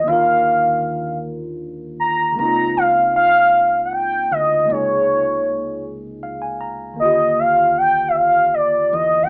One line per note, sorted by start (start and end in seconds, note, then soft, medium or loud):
0.01 2.30 D#3 medium
0.01 2.32 A#3 medium
0.07 2.34 D#2 medium
0.07 2.33 D4 medium
0.07 2.35 F4 medium
0.07 1.18 F5 medium
0.12 2.36 A#4 medium
2.00 2.35 A#5 loud
2.32 4.61 C#3 medium
2.32 4.62 G#3 medium
2.36 4.26 C#2 medium
2.36 4.63 A#3 soft
2.36 4.64 C4 medium
2.36 2.78 A#5 loud
2.41 4.66 D#4 medium
2.41 4.67 F4 medium
2.77 3.15 F5 medium
3.16 3.81 F5 medium
3.85 3.95 F#5 medium
3.93 4.33 G5 loud
4.31 4.65 D2 medium
4.31 4.73 D#5 medium
4.63 6.92 C#3 medium
4.63 6.93 G#3 medium
4.68 7.00 C#2 medium
4.68 6.95 C3 soft
4.68 6.94 A#3 medium
4.68 5.85 C#5 medium
4.72 6.97 D#4 soft
4.72 6.98 G#4 medium
6.23 6.40 F5 medium
6.42 6.59 G#5 medium
6.61 6.96 A#5 medium
6.93 9.23 D#3 medium
6.93 9.24 A#3 medium
6.99 8.88 D#2 medium
6.99 9.26 D3 soft
6.99 9.27 F4 medium
6.99 7.41 D#5 medium
7.05 9.28 G4 medium
7.39 7.76 F5 medium
7.78 8.10 G5 loud
8.08 8.18 E5 medium
8.16 8.56 F5 loud
8.54 8.95 D5 medium
8.93 9.26 E2 medium
8.93 9.24 D#5 medium
9.23 9.29 D#3 medium
9.23 9.29 G5 medium